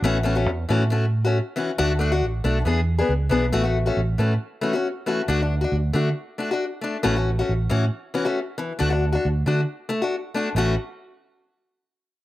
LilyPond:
<<
  \new Staff \with { instrumentName = "Steel-string acoustic guitar" } { \time 4/4 \key a \major \tempo 4 = 137 <e a cis' fis'>16 r16 <e a cis' fis'>16 <a cis' fis'>16 r8 <e a cis' fis'>16 r16 <a cis' fis'>16 r8 <a cis' fis'>16 r8 <e cis' fis'>16 r16 | <a d' fis'>16 r16 <a d' fis'>16 <d' fis'>16 r8 <a d' fis'>16 r16 <e b d' gis'>16 r8 <b d' gis'>16 r8 <e b d' gis'>16 r16 | <e a fis'>16 <a fis'>16 r16 <a cis' fis'>16 r8 <e a cis' fis'>16 r8. <e a cis' fis'>16 <cis' fis'>16 r8 <e a cis' fis'>16 r16 | <a d' fis'>16 d'16 r16 <d' fis'>16 r8 <a d' fis'>16 r8. <a d' fis'>16 <d' fis'>16 r8 <a d'>16 r16 |
<e a cis' fis'>16 <cis' fis'>16 r16 <a cis' fis'>16 r8 <e cis' fis'>16 r8. <e cis' fis'>16 <a cis' fis'>16 r8 e16 r16 | <a d' fis'>16 <d' fis'>16 r16 <d' fis'>16 r8 <a d' fis'>16 r8. a16 <d' fis'>16 r8 <a d' fis'>16 r16 | <e a cis' fis'>8 r2. r8 | }
  \new Staff \with { instrumentName = "Fingered electric bass" } { \clef bass \time 4/4 \key a \major a,,4 e,8 a,2 r8 | d,4 a,,8 b,,8 e,4 cis,8 b,,8 | a,,4 a,,8 a,8 r2 | d,4 d,8 d8 r2 |
a,,4 a,,8 a,8 r2 | d,4 d,8 d8 r2 | a,,8 r2. r8 | }
>>